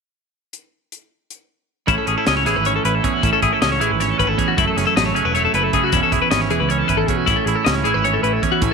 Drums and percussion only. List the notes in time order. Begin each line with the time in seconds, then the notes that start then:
0.53 closed hi-hat
0.92 closed hi-hat
1.30 closed hi-hat
1.88 kick, closed hi-hat
2.07 closed hi-hat
2.27 snare, closed hi-hat
2.46 snare, closed hi-hat
2.65 closed hi-hat
2.85 closed hi-hat
3.04 kick, closed hi-hat
3.23 kick, closed hi-hat
3.42 kick, closed hi-hat
3.62 snare, closed hi-hat
3.81 closed hi-hat
4.00 snare, closed hi-hat
4.20 kick, closed hi-hat
4.39 kick, closed hi-hat
4.58 kick, closed hi-hat
4.78 snare, closed hi-hat
4.97 snare, closed hi-hat
5.16 closed hi-hat
5.35 closed hi-hat
5.54 closed hi-hat
5.73 kick, closed hi-hat
5.92 kick, closed hi-hat
6.12 kick, closed hi-hat
6.31 snare, closed hi-hat
6.50 closed hi-hat
6.70 closed hi-hat
6.89 kick, closed hi-hat
7.08 kick, closed hi-hat
7.27 kick, closed hi-hat
7.47 closed hi-hat
7.66 snare, closed hi-hat
7.85 closed hi-hat
8.05 closed hi-hat
8.24 closed hi-hat
8.43 kick, closed hi-hat
8.62 kick, closed hi-hat